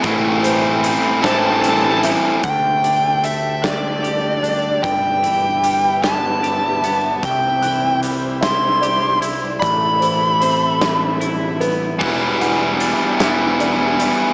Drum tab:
CC |------|------|------|------|
HH |xxxxxx|xxxxxx|xxxxxx|xxxxxx|
SD |---o--|---o--|---o--|---o--|
BD |o--o--|o--o--|o--o--|o--o--|

CC |------|x-----|
HH |xxxxxx|-xxxxx|
SD |---o--|---o--|
BD |o--o--|o-----|